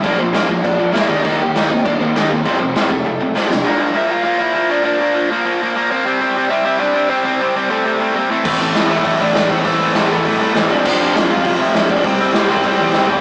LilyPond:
<<
  \new Staff \with { instrumentName = "Overdriven electric guitar" } { \time 4/4 \key bes \lydian \tempo 4 = 200 <d' d''>8 <c' c''>8 <c' c''>8 <bes bes'>8 <d' d''>4 <e' e''>8 <d' d''>8 | <ees' ees''>8 <g' g''>4 <ees' ees''>8 <d' d''>8 <c' c''>8 <d' d''>8 <c' c''>8~ | <c' c''>8 <c' c''>4 <a a'>4. <c' c''>8 <d' d''>8~ | <d' d''>4 <e' e''>8 <f' f''>8 <f' f''>8 <e' e''>4 <d' d''>8 |
<d' d''>4. <bes bes'>4. <bes bes'>8 <c' c''>8~ | <c' c''>4. <e' e''>8 <e' e''>8 <d' d''>4 <c' c''>8 | <c' c''>4. <a a'>4. <bes bes'>8 <c' c''>8~ | <c' c''>4. <e' e''>8 <e' e''>8 <d' d''>4 <c' c''>8 |
<c' c''>4. <a a'>4. <c' c''>8 <d' d''>8~ | <d' d''>4. <f' f''>8 <f' f''>8 <e' e''>4 <d' d''>8 | <c' c''>4 <c' c''>8 <c' c''>2 r8 | }
  \new Staff \with { instrumentName = "Distorted electric guitar" } { \clef bass \time 4/4 \key bes \lydian <bes, f bes>8 <bes, f>8 <bes, f bes>8 <bes, f>8 <bes, f>8 <bes, f>8 <bes, f bes>8 <ees bes ees'>8 | <ees bes ees'>8 <ees bes>8 <ees bes ees'>8 <ees bes>8 <ees bes>8 <ees bes>8 <ees bes ees'>8 <ees bes>8 | <f, c f>8 <f, c>8 <f, c f>8 <f, c>8 <f, c>8 <f, c>8 <f, c f>8 <f, c>8 | <bes, f bes>8 <bes, f bes>8 <bes, f bes>8 <bes, f bes>8 <bes, f bes>8 <bes, f bes>8 <bes, f bes>8 <bes, f bes>8 |
<bes, f bes>8 <bes, f bes>8 <bes, f bes>8 <bes, f bes>8 <bes, f bes>8 <bes, f bes>8 <bes, f bes>8 <bes, f bes>8 | <c g c'>8 <c g c'>8 <c g c'>8 <c g c'>8 <c g c'>8 <c g c'>8 <c g c'>8 <c g c'>8 | <c g c'>8 <c g c'>8 <c g c'>8 <c g c'>8 <c g c'>8 <c g c'>8 <c g c'>8 <a, e a>8 | <a, e a>8 <a, e a>8 <a, e a>8 <a, e a>8 <a, e a>8 <a, e a>8 <a, e a>8 <a, e a>8 |
<a, e a>8 <a, e a>8 <a, e a>8 <a, e a>8 <a, e a>8 <a, e a>8 <a, e a>8 <f, c f>8 | <f, c f>8 <f, c f>8 <f, c f>8 <f, c f>8 <f, c f>8 <f, c f>8 <f, c f>8 <f, c f>8 | <c g c'>8 <c g c'>8 <c g c'>8 <c g c'>8 <c g c'>8 <c g c'>8 <c g c'>8 <c g c'>8 | }
  \new Staff \with { instrumentName = "Distorted electric guitar" } { \clef bass \time 4/4 \key bes \lydian <bes, f bes>8 <bes, f>8 <bes, f bes>8 <bes, f>8 <bes, f>8 <bes, f>8 <bes, f bes>8 <ees bes ees'>8 | <ees bes ees'>8 <ees bes>8 <ees bes ees'>8 <ees bes>8 <ees bes>8 <ees bes>8 <ees bes ees'>8 <ees bes>8 | <f, c f>8 <f, c>8 <f, c f>8 <f, c>8 <f, c>8 <f, c>8 <f, c f>8 <f, c>8 | r1 |
r1 | r1 | r1 | <a, e a>8 <a, e a>8 <a, e a>8 <a, e a>8 <a, e a>8 <a, e a>8 <a, e a>8 <a, e a>8 |
<a, e a>8 <a, e a>8 <a, e a>8 <a, e a>8 <a, e a>8 <a, e a>8 <a, e a>8 <f, c f>8 | <f, c f>8 <f, c f>8 <f, c f>8 <f, c f>8 <f, c f>8 <f, c f>8 <f, c f>8 <f, c f>8 | <c g c'>8 <c g c'>8 <c g c'>8 <c g c'>8 <c g c'>8 <c g c'>8 <c g c'>8 <c g c'>8 | }
  \new Staff \with { instrumentName = "Picked electric bass" } { \clef bass \time 4/4 \key bes \lydian bes,,8 bes,,8 bes,,8 bes,,8 bes,,8 bes,,8 bes,,8 ees,8 | ees,4 ees,8 c8 ees,4 ees,8 ees,8 | f,,8 f,,8 f,,8 f,,8 r2 | r1 |
r1 | r1 | r1 | a,,4 a,,8 e,8 a,,8 a,,8 a,,4 |
a,,4 a,,8 a,,8 a,,8 c,8 a,,8 f,,8 | f,,4 f,,8 c,8 f,,8 f,,8 bes,,4 | c,4 c,8 c,8 c,8 e,8 c,8 c8 | }
  \new DrumStaff \with { instrumentName = "Drums" } \drummode { \time 4/4 <cymc bd>4 <cymc sn>8 bd8 <cymc bd>4 <cymc sn>8 bd8 | <cymc bd>4 <cymc sn>8 bd8 <cymc bd>4 <cymc sn>8 bd8 | <cymc bd>4 <cymc sn>8 bd8 r4 sn8 sn8 | r4 r4 r4 r4 |
r4 r4 r4 r4 | r4 r4 r4 r4 | r4 r4 r4 r4 | <cymc bd>4 <hho sn>8. bd16 <hho bd>4 <hho sn>8 bd8 |
<hho bd>4 <hho sn>8. bd16 <hho bd>4 <hho sn>8 bd8 | <cymc bd>4 <hho sn>8. bd16 <hho bd>4 <hho sn>8 bd8 | <hho bd>4 <hho sn>8. bd16 <hho bd>4 sn8 tomfh8 | }
>>